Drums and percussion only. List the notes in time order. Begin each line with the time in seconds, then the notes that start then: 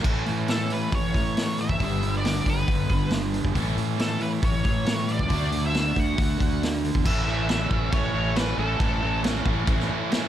0.04 kick, crash
0.26 open hi-hat
0.48 snare, open hi-hat
0.70 open hi-hat
0.92 kick, open hi-hat
1.14 kick, open hi-hat
1.37 snare, open hi-hat
1.58 open hi-hat
1.69 kick
1.80 kick, open hi-hat
2.03 open hi-hat
2.25 snare, open hi-hat
2.46 kick, open hi-hat
2.68 kick, open hi-hat
2.89 kick, open hi-hat
3.10 snare, open hi-hat
3.34 open hi-hat
3.45 kick
3.55 kick, open hi-hat
3.78 open hi-hat
3.99 snare, open hi-hat
4.21 open hi-hat
4.42 kick, open hi-hat
4.65 kick, open hi-hat
4.86 snare, open hi-hat
5.09 open hi-hat
5.19 kick
5.30 kick, open hi-hat
5.52 open hi-hat
5.74 snare, open hi-hat
5.96 kick, open hi-hat
6.18 kick, open hi-hat
6.40 kick, open hi-hat
6.63 snare, open hi-hat
6.85 open hi-hat
6.95 kick
7.06 kick, crash
7.49 snare, crash
7.71 kick
7.92 kick, crash
8.36 snare, crash
8.80 kick, crash
9.24 snare, crash
9.46 kick
9.67 kick, crash
9.80 snare
10.12 snare, crash